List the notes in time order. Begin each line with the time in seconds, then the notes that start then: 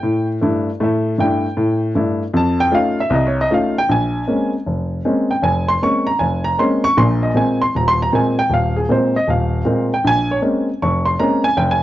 Already playing: G5
0.03 A2
0.41 G2 A3 D4 E4
0.80 A2 A3 E5
1.18 G2 A3 D4 E4 G5
1.57 A2
1.95 G2 A3 D4 E4
2.34 F2 A5
2.60 G5
2.71 A3 C#4 D#4 F4 F5
3.00 E5
3.10 C2 D#5
3.27 C#5
3.41 D#5
3.50 A3 C#4 D#4 F4 F5
3.78 G5
3.89 A#1 G#5
4.27 G#3 A#3 C4 C#4
4.66 F1
5.05 G#3 A#3 C4 C#4
5.31 G5
5.42 F1 G#5
5.68 C6
5.82 G#3 A#3 C4 C#4 C#6
6.07 A#5
6.19 F1 G#5
6.44 A#5
6.58 G#3 A#3 C4 C#4 C6
6.84 C#6
6.97 A#1 A#2 C6
7.23 D#5
7.35 A#2 G#3 A#3 C4 G#5
7.62 C6
7.75 D#1 A#5
7.88 C6
8.02 A#5
8.13 A#2 G#3 A#3 C4 G#5
8.39 G5
8.50 D#1
8.54 F5
8.76 G#4
8.89 A#2 G#3 A#3 C4 C5
9.16 D#5
9.28 D#1 F5
9.65 A#2 G#3 A#3 C4
9.94 G5
10.04 A#1 G#5
10.31 C#5
10.42 G#3 A#3 C4 C#4
10.82 F1 C#6
11.05 C6
11.19 G#3 A#3 C4 C#4 A#5
11.44 G#5
11.57 F1 G5
11.71 G#5